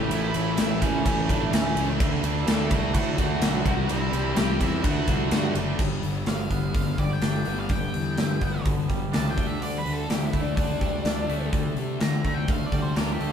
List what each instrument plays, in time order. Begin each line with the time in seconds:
Already playing: distorted electric guitar E3 A3 C#4 E4, lead electric guitar G5
0.10 fingered electric bass A1, distorted electric guitar A2 E3 A3 C#4 E4, lead electric guitar E4 E5, ride
0.34 fingered electric bass A1, distorted electric guitar A2 E3 A3 C#4 E4, ride
0.57 fingered electric bass A1, distorted electric guitar A2 E3 A3 C#4 E4, lead electric guitar E4 E5, snare, ride
0.81 fingered electric bass A1, distorted electric guitar A2 E3 A3 C#4 E4, lead electric guitar C#4 C#5, kick, snare, ride
1.05 fingered electric bass A1, distorted electric guitar A2 E3 A3 C#4 E4, lead electric guitar C#4 C#5, kick, ride
1.29 fingered electric bass G1, distorted electric guitar A2 E3 A3 C#4 E4, lead electric guitar D4 D5, kick, ride
1.53 fingered electric bass D2, distorted electric guitar A2 E3 A3 C#4 E4, lead electric guitar C#4 C#5, snare, ride
1.76 fingered electric bass C#2, distorted electric guitar A2 E3 A3 C#4 E4, ride
1.99 fingered electric bass D2, distorted electric guitar D3 A3 D4 F#4, kick, ride
2.23 fingered electric bass D2, distorted electric guitar D3 A3 D4 F#4, ride
2.47 fingered electric bass D2, distorted electric guitar D3 A3 D4 F#4, lead electric guitar A4 A5, snare, ride
2.70 fingered electric bass C2, distorted electric guitar D3 A3 D4 F#4, lead electric guitar F#4 F#5, kick, ride
2.93 fingered electric bass A2, distorted electric guitar D3 A3 D4 F#4, lead electric guitar F#4 F#5, kick, ride
3.17 fingered electric bass D2, distorted electric guitar D3 A3 D4 F#4, kick, snare, ride
3.42 fingered electric bass B1, distorted electric guitar D3 A3 D4 F#4, snare, ride
3.65 fingered electric bass C2, distorted electric guitar C3 E3 G3 C4 G4, kick, ride
3.88 fingered electric bass C2, distorted electric guitar C3 E3 G3 C4 G4, lead electric guitar E4 E5, ride
4.13 fingered electric bass C2, distorted electric guitar C3 E3 G3 C4 G4, ride
4.36 fingered electric bass C2, distorted electric guitar C3 E3 G3 C4 G4, lead electric guitar G4 G5, snare, ride
4.60 fingered electric bass E2, distorted electric guitar C3 E3 G3 C4 G4, lead electric guitar E4 E5, kick, snare, ride
4.84 fingered electric bass D2, distorted electric guitar D3 A3 D4 F#4, lead electric guitar F#4 F#5, kick, ride
5.08 fingered electric bass C2, distorted electric guitar D3 A3 D4 F#4, kick, snare, ride
5.31 fingered electric bass G2, distorted electric guitar D3 A3 D4 F#4, snare, ride
5.55 fingered electric bass F#1, distorted electric guitar D3 A3 D4 F#4, ride
5.79 fingered electric bass G1, distorted electric guitar G2 D3 G3, kick, crash
6.03 fingered electric bass G1, distorted electric guitar G2 D3, open hi-hat
6.26 fingered electric bass G1, distorted electric guitar G2 D3, lead electric guitar F5, snare, open hi-hat
6.50 fingered electric bass G1, distorted electric guitar G2 D3, clean electric guitar B3, kick, open hi-hat
6.74 fingered electric bass G1, distorted electric guitar G2 D3, kick, open hi-hat
6.97 fingered electric bass G1, distorted electric guitar G2 D3, clean electric guitar G3, lead electric guitar D5, kick, open hi-hat
7.13 lead electric guitar G5
7.22 fingered electric bass G1, distorted electric guitar G2 D3, clean electric guitar D4, snare, open hi-hat
7.45 fingered electric bass G1, distorted electric guitar G2 D3 G3, clean electric guitar B3, open hi-hat
7.60 lead electric guitar F5
7.69 fingered electric bass G1, distorted electric guitar G2 D3, lead electric guitar G5, kick, open hi-hat
7.93 fingered electric bass E2, distorted electric guitar G2 D3, open hi-hat
8.17 distorted electric guitar G2 D3, fingered electric bass G2, snare, open hi-hat
8.41 fingered electric bass G1, distorted electric guitar G2 D3, clean electric guitar B3, kick, open hi-hat
8.65 fingered electric bass G1, distorted electric guitar G2 D3, kick, open hi-hat
8.88 fingered electric bass G1, distorted electric guitar G2 D3, clean electric guitar G3, kick, open hi-hat
9.12 fingered electric bass C#2, distorted electric guitar G2 D3, clean electric guitar D4, lead electric guitar A5, snare, open hi-hat
9.30 lead electric guitar G5
9.36 fingered electric bass D2, distorted electric guitar D3 A3 D4, kick, open hi-hat
9.47 lead electric guitar E5
9.61 fingered electric bass D2, distorted electric guitar D3 A3, lead electric guitar D5, open hi-hat
9.78 lead electric guitar B4
9.85 fingered electric bass D2, distorted electric guitar D3 A3, open hi-hat
9.93 lead electric guitar A4
10.09 fingered electric bass D2, distorted electric guitar D3 A3, lead electric guitar G4, snare, open hi-hat
10.25 lead electric guitar E4
10.33 fingered electric bass D2, distorted electric guitar D3 A3, kick, open hi-hat
10.41 lead electric guitar D4
10.56 fingered electric bass D2, distorted electric guitar D3 A3, lead electric guitar D4, kick, open hi-hat
10.80 fingered electric bass D2, distorted electric guitar D3 A3, clean electric guitar G3, kick, open hi-hat
11.05 fingered electric bass D2, distorted electric guitar D3 A3, clean electric guitar D4, snare, open hi-hat
11.28 fingered electric bass D2, distorted electric guitar D3 A3 D4, open hi-hat
11.53 fingered electric bass D2, distorted electric guitar D3 A3, kick, open hi-hat
11.77 fingered electric bass C3, distorted electric guitar D3 A3, open hi-hat
12.01 distorted electric guitar D3 A3, fingered electric bass D3, lead electric guitar A#5, snare, open hi-hat
12.24 fingered electric bass D2, distorted electric guitar D3 A3, kick, open hi-hat
12.34 lead electric guitar G5
12.48 fingered electric bass D2, distorted electric guitar D3 A3, lead electric guitar F5, kick, open hi-hat
12.66 lead electric guitar D5
12.72 fingered electric bass D2, distorted electric guitar D3 A3, clean electric guitar G3, kick, open hi-hat
12.82 lead electric guitar C5
12.96 fingered electric bass D2, distorted electric guitar D3 A3, clean electric guitar D4, lead electric guitar A#4, snare, open hi-hat
13.13 lead electric guitar G4
13.20 fingered electric bass D2, distorted electric guitar D3 A3 D4, open hi-hat